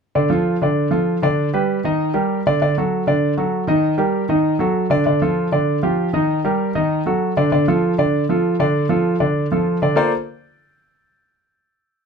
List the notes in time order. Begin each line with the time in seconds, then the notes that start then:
0.15 D3 D4 D5
0.30 F3 F4 A4
0.62 D3 D4 D5
0.91 F3 F4 A4
1.22 D3 D4 D5
1.53 G3 G4 B4
1.84 D#3 D#4 D#5
2.14 G3 G4 A#4
2.47 D3 D4 D5
2.62 D3 D4 D5
2.78 F#3 F#4 A4
3.07 D3 D4 D5
3.37 F#3 F#4 A4
3.67 D#3 D#4 D#5
3.98 G3 G4 A#4
4.29 D#3 D#4 D#5
4.59 F#3 F#4 A4
4.90 D3 D4 D5
5.06 D3 D4 D5
5.22 F3 F4 A4
5.52 D3 D4 D5
5.83 F3 F4 G4
6.13 D#3 D#4 D#5
6.45 G3 G4 A#4
6.75 D#3 D#4 D#5
7.06 F#3 F#4 A4
7.37 D3 D4 D5
7.52 D3 D4 D5
7.68 F3 F4 A4
7.98 D3 D4 D5
8.29 F3 F4 A4
8.60 D3 D4 D5
8.89 F3 F4 A4
9.20 D3 D4 D5
9.52 F3 F4 A4
9.82 D3 D4 D5
9.96 A#3 F4 A4 A#4 C5 D5